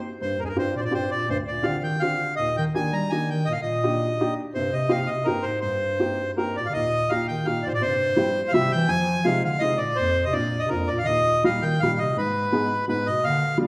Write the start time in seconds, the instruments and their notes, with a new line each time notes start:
0.21 bass clarinet G2, upright piano G2, accordion C5
0.39 bass clarinet G2, accordion A#4
0.43 bass clarinet F2, accordion G#4
0.47 bass clarinet G2, accordion A#4
0.56 bass clarinet G2, upright piano C4 D4 F4 G4, accordion C5
0.76 bass clarinet G#2 A#2, accordion C5 D5
0.84 bass clarinet A#2, accordion D5
0.91 bass clarinet G2, upright piano C4 D4 F4 G4, accordion C5
1.11 bass clarinet A#2, accordion D5
1.29 upright piano D2, bass clarinet G2, accordion C5
1.47 bass clarinet A#2, accordion D5
1.63 upright piano C4 D4 F4 G4, accordion F5
1.67 bass clarinet D3
1.82 bass clarinet D#3, accordion G5
2.00 bass clarinet D3, upright piano C4 D4 F4 G4, accordion F5
2.36 upright piano D#2, bass clarinet A#2, accordion D#5
2.57 bass clarinet D#3, accordion G5
2.75 bass clarinet D#3, upright piano A#3 D4 D#4 G4, accordion G#5
2.93 bass clarinet G3, accordion A#5
3.10 bass clarinet D#3, upright piano A#3 D4 D#4 G4, accordion G#5
3.30 bass clarinet D#3, accordion G5
3.45 upright piano A#2, bass clarinet A#2, accordion D#5
3.52 bass clarinet D3, accordion F5
3.62 bass clarinet A#2, accordion D#5
3.83 upright piano A#3 D4 D#4 G4
4.20 upright piano A#3 D4 D#4 G4
4.55 bass clarinet G2, upright piano C3, accordion C5
4.73 bass clarinet C3, accordion D#5
4.88 bass clarinet C3, upright piano A#3 C4 D#4 G4, accordion F5
5.06 bass clarinet C3, accordion D#5
5.25 bass clarinet G2, upright piano A#3 C4 D#4 G4, accordion A#4
5.42 bass clarinet G#2, accordion C5
5.61 upright piano G2, accordion C5
5.65 bass clarinet G2
6.00 upright piano A#3 C4 D#4 G4
6.37 bass clarinet G2, upright piano A#3 C4 D#4 G4, accordion A#4
6.57 bass clarinet A#2, accordion D5
6.66 bass clarinet D3, accordion F5
6.73 upright piano D#2, bass clarinet A#2, accordion D#5
7.09 bass clarinet A#2, upright piano A#3 D#4 F4 G4, accordion F5
7.28 bass clarinet D#3, accordion G5
7.45 bass clarinet A#2, upright piano A#3 D#4 F4 G4, accordion F5
7.63 bass clarinet A#2, accordion D5
7.67 bass clarinet G#2, accordion C5
7.73 bass clarinet A#2, accordion D5
7.81 bass clarinet G2, upright piano C3, accordion C5
8.16 upright piano G3 C4 E4 G4
8.48 accordion F5
8.52 bass clarinet C3 D3, upright piano G3 C4 E4 G4, accordion E5
8.72 bass clarinet E3, accordion G5
8.88 upright piano F2, bass clarinet F3, accordion G#5
9.25 bass clarinet C3, upright piano G#3 C4 D#4 F4, accordion F5
9.44 bass clarinet D3, accordion F5
9.59 bass clarinet C3, upright piano G#3 C4 D#4 F4, accordion D#5
9.78 bass clarinet A#2, accordion D5
9.96 upright piano A#2, accordion C5
10.00 bass clarinet F2
10.24 bass clarinet C3, accordion D#5
10.32 bass clarinet A#2, upright piano A#3 C4 D4 F4, accordion D5
10.59 accordion D#5
10.66 bass clarinet C3, upright piano A#3, accordion A#4
10.71 bass clarinet F2, upright piano C4 D4 F4
10.87 accordion D5
10.92 bass clarinet A#2
10.98 accordion F5
11.03 bass clarinet D3, accordion D#5
11.08 upright piano D#2, bass clarinet A#2
11.44 bass clarinet A#2, upright piano G3 A#3 D#4 G4, accordion F5
11.62 bass clarinet D#3, accordion G5
11.80 bass clarinet A#2, upright piano G3 A#3 D#4 G4, accordion F5
11.99 bass clarinet C3, accordion D#5
12.17 bass clarinet G#2, upright piano G#2, accordion B4
12.52 upright piano G#3 B3 D#4 G#4
12.88 bass clarinet G#2, upright piano G#3 B3 D#4 G#4, accordion B4
13.06 bass clarinet B2, accordion D#5
13.23 upright piano A#2, accordion F5
13.27 bass clarinet D3
13.58 upright piano G3 A#3 D4 F4